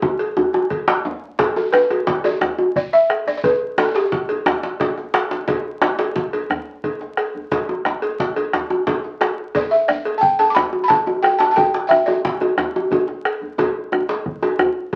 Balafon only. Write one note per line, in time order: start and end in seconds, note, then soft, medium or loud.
1.57 1.74 A4 medium
1.73 2.26 B4 medium
2.25 2.73 D5 medium
2.76 2.92 D5 medium
2.93 3.28 E5 medium
3.28 3.36 D5 medium
3.37 3.44 D5 medium
3.44 3.79 B4 medium
3.79 3.87 A4 medium
3.88 3.95 A4 medium
3.96 4.60 G4 medium
9.56 9.73 D5 medium
9.71 9.89 E5 medium
9.88 10.16 D5 medium
10.18 10.39 G5 medium
10.18 10.22 A5 medium
10.39 10.50 A5 medium
10.50 10.56 D6 medium
10.55 10.83 B5 medium
10.84 10.90 B5 medium
10.88 11.24 A5 loud
11.23 11.39 G5 medium
11.39 11.49 A5 medium
11.51 11.57 A5 medium
11.56 11.86 G5 medium
11.87 11.97 E5 medium
11.87 11.91 G5 medium
12.06 13.37 D5 medium